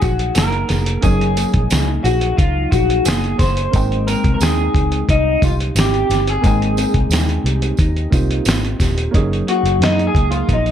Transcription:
Already playing: F#3 A#3 C#4 D#4 G#4
0.01 A#1 F#4 G#4, kick, closed hi-hat, tambourine
0.19 closed hi-hat
0.35 F#1 A#3 A#4, snare, closed hi-hat, tambourine
0.52 closed hi-hat
0.69 F1 G#4, snare, closed hi-hat, tambourine
0.86 closed hi-hat
1.01 F#1 F#3 A#3 C#4 D#4 G#4, kick, closed hi-hat, tambourine
1.06 G#4
1.21 closed hi-hat
1.37 A#3, closed hi-hat, tambourine
1.54 A#1, kick, closed hi-hat
1.70 C#2 C#4, snare, closed hi-hat, tambourine
1.88 D#4
2.04 A#1 F#4 G#4, closed hi-hat, tambourine
2.21 closed hi-hat
2.37 C#2 D#4 F4, kick, closed hi-hat
2.71 A#1 F#4 G#4, kick, closed hi-hat, tambourine
2.90 closed hi-hat
3.05 F#1 A#3 G#4, snare, closed hi-hat, tambourine
3.24 closed hi-hat
3.39 F#1 G#4 C5, kick, snare, closed hi-hat, tambourine
3.57 closed hi-hat
3.71 G#1 G#3 A#3 C4 D#4, kick, closed hi-hat, tambourine
3.76 G5
3.92 closed hi-hat
4.07 C4 A#4, closed hi-hat, tambourine
4.24 C2, kick, closed hi-hat
4.34 A#4
4.41 D#2 D#4 G#4, snare, closed hi-hat, tambourine
4.74 C#2, kick, closed hi-hat
4.92 closed hi-hat
5.08 C2 D#4, kick, closed hi-hat
5.42 C2 F4 G4, kick, closed hi-hat, tambourine
5.60 closed hi-hat
5.75 G#1 C4 G4, snare, closed hi-hat, tambourine
5.94 closed hi-hat
6.09 G1, snare, closed hi-hat, tambourine
6.27 G#4, closed hi-hat
6.41 G#1 G#3 A#3 C4 D#4, kick, closed hi-hat, tambourine
6.47 G5
6.62 closed hi-hat
6.77 C4, closed hi-hat, tambourine
6.94 C2, kick, closed hi-hat
7.10 D#2 D#4, snare, closed hi-hat, tambourine
7.29 closed hi-hat
7.44 C2 G4, closed hi-hat
7.62 closed hi-hat
7.77 D#2 D#4, kick, closed hi-hat, tambourine
7.97 closed hi-hat
8.10 C2 A#3 C4 D#4 F4 G4, kick, closed hi-hat, tambourine
8.31 closed hi-hat
8.45 G#1 C4, snare, closed hi-hat, tambourine
8.65 closed hi-hat
8.79 D#1 G4, kick, snare, closed hi-hat, tambourine
8.98 closed hi-hat
9.11 F#1 F#3 A#3 C#4 D#4, kick, closed hi-hat
9.16 G#4
9.33 closed hi-hat
9.47 A#3 F#4, closed hi-hat
9.63 F#1, closed hi-hat
9.80 F#2 D#4 G#4, snare, closed hi-hat
9.99 closed hi-hat
10.07 G#4
10.14 C#2 A#3, kick, closed hi-hat
10.31 F4, closed hi-hat
10.49 A#1 D#4, kick, closed hi-hat
10.53 D#4
10.66 closed hi-hat

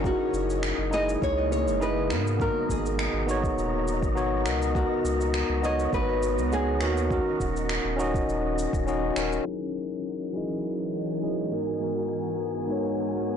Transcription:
Already playing: F#1 C#3 D#5
0.02 G#3 A#3 D#4 E4 G#4, kick, cabasa
0.06 F#4 A#4
0.33 F#1, cabasa
0.50 cabasa
0.63 finger snap, cabasa
0.78 F#1
0.91 D#4 E4 G#4 D#5, cabasa
0.95 D#5
1.09 cabasa
1.22 C#2 C#5, kick, cabasa
1.52 C#5, cabasa
1.67 F#1, cabasa
1.80 D#4 E4 G#4 B4 D#5, cabasa
2.09 G#2 B2 B3 D#4 F#4 A#4 A#5, finger snap, cabasa
2.27 cabasa
2.37 B3 D#4 F#4, kick, cabasa
2.41 A#4
2.69 G#1 G#4, kick, cabasa
2.86 cabasa
2.99 finger snap, cabasa
3.14 G#1
3.26 B3 D#4 F#4, cabasa
3.31 C#5
3.44 kick, cabasa
3.57 D#1, cabasa
3.88 cabasa
4.02 G#1, kick, cabasa
4.15 B3 D#4 F#4 C#5, cabasa
4.45 C#2 D#3 B3 D#4 F#4 A#4, finger snap, cabasa
4.62 cabasa
4.74 B3 D#4 F#4, kick, cabasa
4.78 A#4
5.05 C#2, cabasa
5.21 cabasa
5.34 finger snap, cabasa
5.49 C#2
5.62 B3 D#4 F#4 D#5, cabasa
5.66 C#5
5.79 cabasa
5.93 G#1 B4, kick, cabasa
6.23 cabasa
6.38 C#2, cabasa
6.52 B3 D#4 F#4 G#4 C#5, cabasa
6.81 D#2 B3 D#4 F#4 A#4, finger snap, cabasa
6.97 cabasa
7.09 C#4 D#4 F#4, kick, cabasa
7.13 A#4
7.40 D#1, kick, cabasa
7.56 cabasa
7.69 finger snap, cabasa
7.85 D#1
7.97 C#4 D#4 F#4, cabasa
8.01 D#5
8.14 kick, cabasa
8.28 D#1, cabasa
8.59 cabasa
8.73 D#1, kick, cabasa
8.87 C#4 D#4 F#4 D#5, cabasa
9.16 D#1 C#4 D#4 F#4 A#4, finger snap, cabasa
9.33 cabasa
9.45 E3 F#3 G#3 C#4 F#4 A#4 D#5 G#5
9.49 A#4
10.33 F#3 C#4 D#4 E4 G#4
10.37 D#5
11.22 F#3 C#4 D#4 E4 G#4 D#5
11.51 G#2 B3 D#4 F#4 A#4
11.80 G#2 B3 D#4 F#4
11.84 A#4
12.67 G#2 B3 D#4 F#4
12.72 C#5

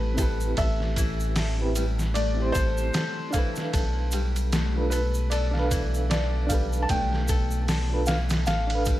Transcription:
Already playing: A1 E3 G3 A3 C4 E4 G4 A4 B4
0.15 C4 E4 A4, kick, ride, shaker
0.20 G4 B4
0.40 shaker
0.57 A1 A4 E5, kick, ride, shaker
0.80 snare
0.96 E3, kick, ride, shaker
1.20 shaker
1.36 A4, snare, open hi-hat, shaker
1.58 C4 E4 G4 B4
1.75 G3, ride, shaker
1.99 snare, shaker
2.14 A3 D5, ride, shaker
2.34 C4 E4
2.40 G4 C5
2.52 A1 A4 C5, kick, ride, shaker
2.77 shaker
2.94 A4, snare, ride, shaker
3.31 E3 D4 F5, kick, ride, shaker
3.36 A4 B4
3.56 snare, shaker
3.73 B1 A4, kick, ride, shaker
4.11 G3, ride, shaker
4.36 ride, shaker
4.52 A3, snare, ride, shaker
4.74 D4 F4 A4 B4
4.90 A4 B4, ride, shaker
5.14 shaker
5.30 A4 D5, ride, shaker
5.51 D4 F5, snare
5.56 A4 B4
5.71 E3, kick, ride, shaker
5.94 shaker
6.10 A4 D5, snare, ride, shaker
6.47 G3 D4 F5, kick, ride, shaker
6.52 A4 B4
6.73 shaker
6.82 A5
6.89 B1 A3 G5, kick, ride, shaker
7.13 snare
7.28 A4, kick, ride, shaker
7.51 shaker
7.68 A4, snare, open hi-hat, shaker
7.90 D4 F4 A4 B4
8.06 E3 F5, snare, ride, shaker
8.29 snare, ride, shaker
8.46 A1 A4 F5, snare, ride, shaker
8.67 D4 F5, ride
8.72 A4 B4
8.85 G3, kick, ride, shaker

